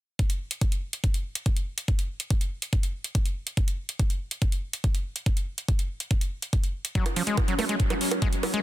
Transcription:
0.19 kick, closed hi-hat
0.30 closed hi-hat
0.51 closed hi-hat
0.61 kick, closed hi-hat
0.72 closed hi-hat
0.93 closed hi-hat
1.04 kick, closed hi-hat
1.14 closed hi-hat
1.35 closed hi-hat
1.46 kick, closed hi-hat
1.57 closed hi-hat
1.78 closed hi-hat
1.88 kick, closed hi-hat
1.99 closed hi-hat
2.20 closed hi-hat
2.30 kick, closed hi-hat
2.41 closed hi-hat
2.62 closed hi-hat
2.73 kick, closed hi-hat
2.83 closed hi-hat
3.04 closed hi-hat
3.15 kick, closed hi-hat
3.26 closed hi-hat
3.47 closed hi-hat
3.57 kick, closed hi-hat
3.68 closed hi-hat
3.89 closed hi-hat
3.99 kick, closed hi-hat
4.10 closed hi-hat
4.31 closed hi-hat
4.42 kick, closed hi-hat
4.52 closed hi-hat
4.73 closed hi-hat
4.84 kick, closed hi-hat
4.95 closed hi-hat
5.16 closed hi-hat
5.26 kick, closed hi-hat
5.37 closed hi-hat
5.58 closed hi-hat
5.68 kick, closed hi-hat
5.79 closed hi-hat
6.00 closed hi-hat
6.11 kick, closed hi-hat
6.21 closed hi-hat
6.42 closed hi-hat
6.53 kick, closed hi-hat
6.64 closed hi-hat
6.85 closed hi-hat
6.95 F#3 C#4, kick, closed hi-hat
7.06 closed hi-hat, high bongo
7.16 F3, open hi-hat
7.27 G#3, closed hi-hat
7.37 kick, closed hi-hat, high bongo
7.48 F#3, closed hi-hat
7.59 A3, open hi-hat, high bongo
7.69 G#3, closed hi-hat
7.80 kick, closed hi-hat
7.90 F#3, closed hi-hat, high bongo
8.01 open hi-hat
8.11 closed hi-hat, high bongo
8.22 G#3, kick, closed hi-hat
8.33 closed hi-hat
8.43 open hi-hat, high bongo
8.54 G#3, closed hi-hat

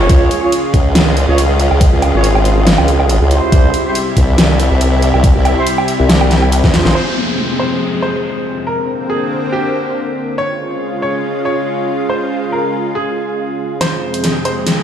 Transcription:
Already playing: F4 G#4 C#5
0.09 C#2 C#3 G#3 F4, kick, closed hi-hat
0.31 closed hi-hat
0.43 F4 G#4 C#5
0.52 closed hi-hat
0.74 C#2, kick, closed hi-hat
0.95 C#2, snare, closed hi-hat
1.17 closed hi-hat
1.28 C#2 F4 G#4 C#5
1.38 closed hi-hat
1.60 closed hi-hat
1.71 C#2, low woodblock
1.81 kick, closed hi-hat
1.93 C#2
2.02 closed hi-hat, low woodblock
2.14 G#1 F4 G#4 C#5
2.24 closed hi-hat
2.35 low woodblock
2.45 closed hi-hat
2.67 snare, closed hi-hat
2.78 C#2, low woodblock
2.88 closed hi-hat
3.00 low woodblock
3.09 closed hi-hat
3.21 C#2
3.31 E4 G4 C5, closed hi-hat
3.52 C2 C3 G3 E4, kick, closed hi-hat
3.74 closed hi-hat
3.85 E4 G4 C5
3.95 closed hi-hat
4.17 C2, kick, closed hi-hat
4.38 C2, snare, closed hi-hat
4.60 closed hi-hat
4.71 C2
4.81 closed hi-hat
5.02 closed hi-hat
5.14 C2, low woodblock
5.24 kick, closed hi-hat
5.35 C2
5.45 closed hi-hat, low woodblock
5.57 E4 G4 C5
5.67 closed hi-hat
5.78 low woodblock
5.88 closed hi-hat
6.00 C2
6.09 snare, closed hi-hat
6.21 low woodblock
6.31 snare, closed hi-hat
6.42 low woodblock
6.52 closed hi-hat
6.64 E2, kick, snare
6.74 F4 G#4 C5, snare, closed hi-hat
6.85 A#1, snare
6.95 F2 C3 G#3 C5, downlifter
7.60 C5
8.02 C5
8.67 D3 A#3 C4 A#4
9.10 G#4
9.52 G4
10.38 C#3 G#3 F4 C#5
11.02 C#5
11.45 C#5
12.10 C5
12.52 A#4
12.95 G#4
13.81 F2 C3 G#3 C5, snare, closed hi-hat, riser
14.14 closed hi-hat
14.24 snare, closed hi-hat
14.45 C5, closed hi-hat
14.67 snare, closed hi-hat

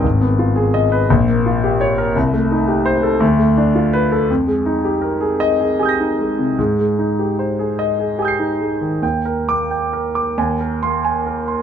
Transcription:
0.04 G#1
0.21 B3
0.39 F4
0.56 G#4
0.74 D#5
0.92 B4
1.10 A#1
1.29 A#3
1.46 F4
1.64 G4
1.81 C#5
1.98 A#4
2.16 C2
2.33 A3
2.51 D#4
2.68 G4
2.86 C5
3.03 A4
3.20 D2
3.39 A3
3.57 D4
3.75 F4
3.93 B4
4.12 A4
4.30 F2
4.47 G#3
4.66 D#4
4.85 G4
5.01 A#4
5.21 G#4
5.40 D#5
5.60 G#4
5.79 G4 G#5 D#6
5.85 G6 A#6
6.00 D#4
6.19 G#3
6.39 C3
6.59 G#2
6.79 G#3
6.99 D#4
7.19 G4
7.39 C5
7.59 G#4
7.79 D#5
7.99 G#4
8.19 G4 G#5 D#6
8.25 G6 C7
8.39 D#4
8.60 G#3
8.81 D#3
9.02 D#2 G5
9.25 A#4
9.48 A#3 D6
9.71 G5
9.93 A#4
10.15 D6
10.38 D#2 G#5
10.61 A#4
10.83 A#3 C6
11.05 G#5
11.27 A#4
11.48 C6

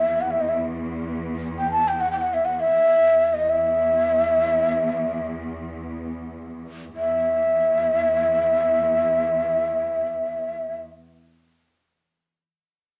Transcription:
Already playing: E2 E5
0.21 F#5
0.31 E5
0.41 D#5
0.49 E5
1.58 G5
1.71 A5
1.88 G5
2.00 F#5
2.11 G5
2.21 F#5
2.34 E5
2.45 F#5
2.60 E5
2.75 E2
3.34 D#5
3.50 E5
6.96 E2 E5

